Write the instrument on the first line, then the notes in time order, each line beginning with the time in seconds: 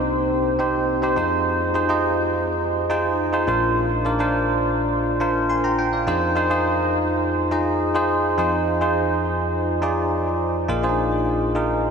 tine electric piano
Already playing: C2 C3 C4 D#4 G4 C5
0.59 C4 D#4 G4 C5
1.02 C4 D#4 G4 C5
1.17 F2 D#4 F4 G#4 C5
1.74 D#4 F4 G#4 C5
1.89 D#4 F4 G#4 D#5
2.90 D#4 F4 G#4 C5
3.33 D#4 F4 G#4 C5
3.47 A#1 A#2 D4 F4 A#4 C5
4.05 D4 F4 A#4 D5
4.19 D4 F4 A#4 C5
5.20 D4 F4 A#4 C5
5.50 G#5 C6
5.64 G5 A#5
5.79 G5
5.93 D5 F5
6.07 F2 D#4 F4 G#4 C5
6.35 D#4 F4 G#4 C5
6.50 D#4 F4 G#4 C5
7.51 D#4 F4 G#4 D#5
7.95 D#4 F4 G#4 C5
8.38 F2 D#4 F4 G#4 C5
8.81 D#4 F4 G#4 C5
9.82 D#4 F4 G#4 D5
10.68 A#1 A#2 D#4 F4 G#4 A#4
10.83 D4 F4 G#4 C5
10.89 D#4
11.55 D#4 F4 G#4 A#4